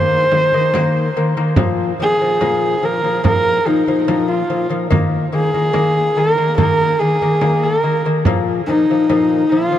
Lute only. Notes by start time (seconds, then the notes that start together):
Already playing: D#3 A#3
0.32 D#3 A#3
0.54 D#3 A#3
0.74 D#3 A#3
1.17 D#3 A#3
1.37 D#3 A#3
1.57 A#2 F3
2.00 A#2 F3
2.21 A#2 F3
2.41 A#2 F3
2.82 A#2 F3
3.04 A#2 F3
3.24 A#2 F3
3.66 A#2 F3
3.88 A#2 F3
4.08 A#2 F3
4.50 A#2 F3
4.70 A#2 F3
4.90 D#3 A#3
5.32 D#3 A#3
5.54 D#3 A#3
5.73 D#3 A#3
6.16 D#3 A#3
6.38 D#3 A#3
6.58 D#3 A#3
7.00 D#3 A#3
7.22 D#3 A#3
7.41 D#3 A#3
7.83 D#3 A#3
8.06 D#3 A#3
8.26 A#2 F3
8.69 A#2 F3
8.90 A#2 F3
9.09 A#2 F3
9.52 A#2 F3
9.72 A#2 F3